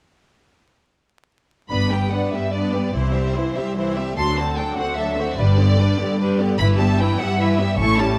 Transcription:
1.70 2.10 G1 soft
1.70 2.26 G2 soft
1.70 1.90 B3 soft
1.70 1.90 D4 soft
1.70 1.90 B4 soft
1.70 1.90 D5 soft
1.70 1.90 B5 medium
1.90 2.13 G3 soft
1.90 2.11 B3 soft
1.90 2.13 G4 soft
1.90 2.11 B4 soft
1.90 2.12 G5 medium
2.12 2.33 B3 soft
2.12 2.33 D4 soft
2.12 2.32 B4 soft
2.12 2.33 D5 soft
2.12 2.33 F#5 medium
2.33 2.88 G2 soft
2.33 2.54 G3 soft
2.33 2.53 B3 soft
2.33 2.54 G4 soft
2.33 2.52 B4 soft
2.33 2.53 E5 medium
2.52 2.73 B3 soft
2.52 2.73 D4 soft
2.52 2.72 B4 soft
2.52 2.95 D5 medium
2.52 2.73 D5 soft
2.74 2.95 G3 soft
2.74 2.96 B3 soft
2.74 2.95 G4 soft
2.74 2.95 B4 soft
2.93 3.49 C2 medium
2.93 3.33 C2 soft
2.93 3.15 E3 soft
2.93 3.14 E4 soft
2.93 3.97 C5 medium
2.93 3.14 C5 soft
3.15 3.36 G3 soft
3.15 3.36 C4 soft
3.15 3.36 G4 soft
3.15 3.36 E5 soft
3.36 3.57 E3 soft
3.36 3.57 E4 soft
3.36 3.57 C5 soft
3.56 4.11 C2 soft
3.56 3.77 G3 soft
3.56 3.77 C4 soft
3.56 3.77 G4 soft
3.56 3.77 E5 soft
3.77 3.96 E3 soft
3.77 3.96 E4 soft
3.77 3.96 C5 soft
3.97 4.18 G3 soft
3.97 4.18 C4 soft
3.97 4.18 G4 soft
3.97 4.18 E5 soft
4.17 4.71 D2 medium
4.17 4.56 D2 medium
4.17 4.37 F#3 soft
4.17 4.37 D4 soft
4.17 4.37 A4 soft
4.17 4.37 C6 medium
4.38 4.59 D3 soft
4.38 4.59 C4 soft
4.38 4.58 F#4 soft
4.38 4.58 C5 soft
4.38 4.58 A5 medium
4.58 4.78 F#3 soft
4.58 4.78 D4 soft
4.58 4.78 A4 soft
4.58 4.78 G5 medium
4.77 5.31 D2 soft
4.77 4.99 D3 soft
4.77 4.98 C4 soft
4.77 4.98 F#4 soft
4.77 4.98 C5 soft
4.77 4.97 F#5 medium
4.98 5.17 F#3 soft
4.98 5.17 D4 soft
4.98 5.17 A4 soft
4.98 5.38 E5 medium
5.18 5.39 D3 soft
5.18 5.39 C4 soft
5.18 5.39 F#4 soft
5.18 5.38 C5 soft
5.38 5.76 G1 medium
5.38 5.92 G2 medium
5.38 5.57 G3 soft
5.38 5.58 D4 soft
5.38 5.57 B4 soft
5.38 6.39 D5 medium
5.59 5.79 D3 soft
5.59 5.79 B3 soft
5.59 5.79 G4 soft
5.59 5.79 D5 soft
5.79 5.99 G3 soft
5.79 5.99 D4 soft
5.79 5.99 B4 soft
5.99 6.52 G2 medium
5.99 6.19 D3 soft
5.99 6.19 B3 soft
5.99 6.20 G4 soft
5.99 6.19 D5 soft
6.19 6.38 G3 soft
6.19 6.38 D4 medium
6.19 6.39 B4 soft
6.40 6.60 D3 soft
6.40 6.60 B3 soft
6.40 6.60 G4 medium
6.40 6.60 D5 soft
6.59 6.97 G1 medium
6.59 7.12 G2 medium
6.59 6.78 E3 soft
6.59 6.78 E4 medium
6.59 6.78 E4 soft
6.59 6.78 B4 medium
6.59 6.67 B5 medium
6.79 7.00 G3 soft
6.79 7.00 B3 soft
6.79 7.00 G4 soft
6.79 7.00 E5 soft
6.79 6.99 A5 medium
6.99 7.20 E3 soft
6.99 7.20 E4 soft
6.99 7.20 B4 medium
6.99 7.19 G5 medium
7.19 7.72 G2 medium
7.19 7.40 G3 soft
7.19 7.40 B3 soft
7.19 7.39 G4 medium
7.19 7.39 E5 soft
7.19 7.40 F#5 medium
7.39 7.58 E3 soft
7.39 7.58 E4 soft
7.39 7.58 B4 medium
7.39 7.80 E5 medium
7.59 7.80 G3 soft
7.59 7.80 B3 soft
7.59 7.79 G4 medium
7.59 7.79 E5 medium
7.78 8.17 A1 medium
7.78 8.19 A2 medium
7.78 7.99 A3 soft
7.78 7.98 C#4 soft
7.78 7.99 E4 soft
7.78 7.98 A4 medium
7.78 7.99 C#6 medium
7.98 8.19 G3 soft
7.98 8.19 C#4 soft
7.98 8.19 E4 soft
7.98 8.19 G4 soft
7.98 8.19 A5 medium

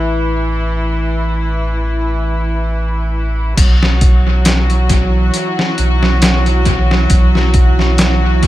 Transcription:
0.00 3.54 A1 medium
0.00 3.61 E3 medium
0.00 3.61 E4 medium
3.57 5.31 B1 loud
3.57 8.47 E3 medium
3.57 8.47 F#3 medium
3.57 8.47 E4 medium
3.57 8.47 F#4 medium
3.57 kick loud
3.57 closed hi-hat medium
3.57 crash medium
3.83 snare medium
4.01 kick loud
4.01 closed hi-hat medium
4.45 snare loud
4.45 closed hi-hat medium
4.70 closed hi-hat soft
4.89 kick loud
4.89 closed hi-hat medium
5.34 closed hi-hat medium
5.59 snare medium
5.78 7.08 B1 medium
5.78 closed hi-hat medium
6.03 snare soft
6.22 snare loud
6.22 closed hi-hat medium
6.46 closed hi-hat soft
6.65 kick medium
6.65 closed hi-hat medium
6.91 snare medium
7.10 8.47 B1 loud
7.10 kick loud
7.10 closed hi-hat medium
7.35 snare soft
7.54 kick medium
7.54 closed hi-hat medium
7.79 snare soft
7.98 snare loud
7.98 closed hi-hat medium
8.43 kick medium
8.43 closed hi-hat medium

